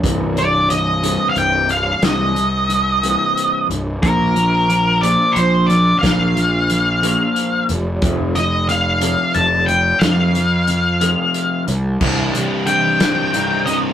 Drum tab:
CC |------|------|------|------|
HH |xxxxxx|xxxxxx|xxxxxx|xxxxxx|
SD |------|o-----|------|o-----|
BD |o-----|------|o-----|o-----|

CC |------|------|x-----|
HH |xxxxxx|xxxxxx|-xxxxx|
SD |------|o-----|---o--|
BD |o-----|------|o-----|